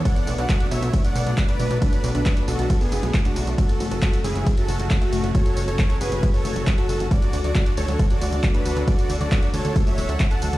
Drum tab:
RD |x---x---x---x---|x---x---x---x---|x---x---x---x---|x---x---x---x---|
HH |xxoxxxoxxxoxxxox|xxoxxxoxxooxxxox|xxoxxxoxxxoxxxox|xxoxxxoxxooxxxox|
TB |xxxxx-xxxxxxx-xx|xxxxx-xxxxxxxxxx|xxxxx-xxxxxxx-xx|xxxxx-xxxxxxx-xx|
CP |----x-------x---|----x-------x---|----x-------x---|----x-------x---|
BD |o---o---o---o---|o---o---o---o---|o---o---o---o---|o---o---o---o---|

RD |x---x---x---x---|x---x---x---x---|
HH |xxoxxxoxxxoxxxox|xxoxxxoxxooxxxox|
TB |xxxxx-xxxxxxx-xx|xxxxx-xxxxxxxxxx|
CP |----x-------x---|----x-------x---|
BD |o---o---o---o---|o---o---o---o---|